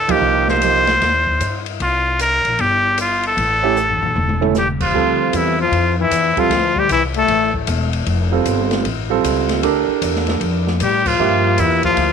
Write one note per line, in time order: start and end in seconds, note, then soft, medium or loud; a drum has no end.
0.00 0.20 C#2 medium
0.00 0.13 A4 medium
0.08 0.59 F3 medium
0.08 0.59 A#3 medium
0.08 0.59 D#4 medium
0.08 0.60 G4 medium
0.08 0.49 G4 medium
0.08 kick medium
0.08 ride medium
0.22 0.97 C2 medium
0.48 1.63 C5 medium
0.48 snare soft
0.62 0.85 F3 medium
0.62 0.85 A#3 soft
0.62 0.86 D#4 soft
0.62 0.86 G4 medium
0.62 hi-hat pedal medium
0.62 ride medium
0.87 snare medium
0.87 ride soft
1.01 1.38 D#2 medium
1.01 snare soft
1.01 ride soft
1.27 kick soft
1.40 1.77 G2 medium
1.40 hi-hat pedal medium
1.40 ride medium
1.66 ride soft
1.80 2.41 C2 medium
1.80 2.18 F4 medium
1.80 ride soft
2.19 2.62 A#4 medium
2.19 hi-hat pedal medium
2.19 ride medium
2.45 2.58 A#1 medium
2.45 ride soft
2.59 3.33 G1 medium
2.59 2.99 G4 medium
2.59 ride soft
2.98 3.23 F4 medium
2.98 hi-hat pedal medium
2.98 ride medium
3.23 4.53 A4 medium
3.23 ride soft
3.37 3.98 A1 medium
3.37 ride medium
3.63 3.75 A3 medium
3.63 3.75 C#4 medium
3.63 3.75 E4 medium
3.63 3.76 G4 medium
3.76 hi-hat pedal soft
3.90 floor tom soft
4.02 4.15 A#1 medium
4.02 floor tom medium
4.15 4.90 E1 medium
4.15 mid tom medium
4.29 mid tom medium
4.41 4.54 A3 medium
4.41 4.54 C#4 medium
4.41 4.54 E4 medium
4.41 4.54 A4 medium
4.41 mid tom medium
4.55 4.67 G3 medium
4.55 4.69 G4 medium
4.55 snare soft
4.55 hi-hat pedal medium
4.81 5.35 F3 medium
4.81 5.38 F4 medium
4.81 kick medium
4.81 crash medium
4.94 5.32 D2 medium
4.94 5.54 G3 medium
4.94 5.54 C4 medium
4.94 5.54 F4 medium
4.94 5.54 A4 medium
5.33 5.71 E2 medium
5.33 5.59 E3 medium
5.33 5.60 E4 medium
5.33 hi-hat pedal soft
5.33 ride medium
5.59 5.95 F3 medium
5.59 5.96 F4 medium
5.71 6.10 F2 medium
5.71 ride soft
5.98 6.39 E3 medium
5.98 6.41 E4 medium
6.10 6.35 E2 medium
6.10 hi-hat pedal medium
6.10 ride medium
6.36 6.78 F3 medium
6.36 6.50 G3 medium
6.36 6.49 C4 medium
6.36 6.50 F4 medium
6.36 6.81 F4 medium
6.36 6.50 A4 medium
6.36 muted upright bass stroke soft
6.36 kick medium
6.36 ride soft
6.49 6.88 D2 medium
6.49 snare soft
6.49 ride medium
6.76 6.90 G3 medium
6.76 6.92 G4 medium
6.76 kick soft
6.89 7.27 C2 medium
6.89 7.02 E3 medium
6.89 7.03 E4 medium
6.89 hi-hat pedal medium
6.89 ride medium
7.14 7.52 A3 medium
7.14 ride soft
7.18 7.53 A4 loud
7.28 7.67 A1 medium
7.28 ride medium
7.54 kick soft
7.67 8.06 E1 medium
7.67 hi-hat pedal medium
7.67 ride medium
7.93 ride soft
8.06 8.45 F1 medium
8.06 ride medium
8.32 8.82 G3 medium
8.32 8.83 C4 medium
8.32 8.83 F4 medium
8.32 8.83 A4 medium
8.46 8.84 G1 medium
8.46 hi-hat pedal medium
8.46 ride medium
8.71 snare soft
8.71 ride soft
8.85 9.23 A1 medium
8.85 ride medium
9.10 9.60 G3 medium
9.10 9.60 C4 medium
9.10 9.60 F4 medium
9.10 9.61 A4 medium
9.24 9.62 C#2 medium
9.24 hi-hat pedal medium
9.24 ride medium
9.49 snare soft
9.49 ride soft
9.63 9.86 D2 medium
9.63 10.72 D4 medium
9.63 10.72 G4 medium
9.63 10.72 A4 medium
9.63 10.73 A#4 medium
9.63 ride medium
9.88 muted upright bass stroke soft
10.02 10.40 E2 medium
10.02 hi-hat pedal medium
10.02 ride medium
10.15 snare soft
10.27 snare soft
10.27 ride soft
10.40 10.79 F2 medium
10.40 ride medium
10.67 snare soft
10.80 11.18 A2 medium
10.80 11.07 G3 medium
10.80 11.09 G4 medium
10.80 hi-hat pedal medium
10.80 ride medium
11.06 11.61 F3 medium
11.06 11.62 F4 medium
11.06 kick medium
11.06 crash medium
11.19 11.57 G2 medium
11.19 12.13 A#3 medium
11.19 12.13 F4 medium
11.19 12.13 G4 medium
11.19 12.13 E5 medium
11.58 11.96 E2 medium
11.58 11.84 E3 medium
11.58 11.84 E4 medium
11.58 hi-hat pedal medium
11.58 ride medium
11.83 12.13 F3 medium
11.83 12.13 F4 medium
11.83 kick medium
11.83 ride soft
11.96 12.13 D2 medium
11.96 ride medium